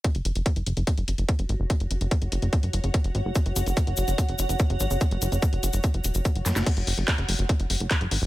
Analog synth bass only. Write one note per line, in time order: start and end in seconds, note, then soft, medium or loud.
0.15 0.21 F#1 medium
0.25 0.32 F#1 loud
0.35 0.42 F#1 medium
0.56 0.63 F#1 medium
0.67 0.73 F#1 medium
0.77 0.83 F#1 medium
0.98 1.04 F#1 medium
1.08 1.14 F#1 loud
1.18 1.25 F#1 medium
1.39 1.45 F#1 medium
1.49 1.56 G#1 loud
1.60 1.66 F#1 medium
1.80 1.87 F#1 medium
1.91 1.97 F#1 loud
2.01 2.07 F#1 medium
2.22 2.28 F#1 medium
2.32 2.39 F#1 loud
2.42 2.49 F#1 medium
2.63 2.70 F#1 medium
2.73 2.80 F#1 loud
2.84 2.90 F#1 medium
3.04 3.11 F#1 medium
3.15 3.21 G#1 loud
3.25 3.32 F#1 medium
3.46 3.52 F#1 medium
3.56 3.63 F#1 loud
3.66 3.73 F#1 medium
3.87 3.94 F#1 medium
3.98 4.04 F#1 loud
4.08 4.14 F#1 medium
4.29 4.35 F#1 medium
4.39 4.45 F#1 loud
4.49 4.56 F#1 medium
4.70 4.76 F#1 medium
4.80 4.87 G#1 loud
4.91 4.97 F#1 medium
5.11 5.18 F#1 medium
5.22 5.28 F#1 loud
5.32 5.39 F#1 medium
5.53 5.59 F#1 medium
5.63 5.70 F#1 loud
5.73 5.80 F#1 medium
5.94 6.01 F#1 medium
6.04 6.11 E1 loud
6.15 6.21 F#1 loud
6.35 6.42 F#1 medium
6.46 6.52 F#2 loud
6.56 6.63 F#1 medium
6.77 6.83 F#1 medium
6.87 6.94 F#1 loud
6.98 7.04 F#1 medium
7.18 7.25 F#1 medium
7.29 7.35 F#1 loud
7.39 7.45 F#1 medium
7.60 7.66 F#1 medium
7.70 7.76 F#1 loud
7.80 7.87 F#1 medium
8.01 8.07 F#1 medium
8.11 8.18 G#1 loud
8.22 8.26 F#1 medium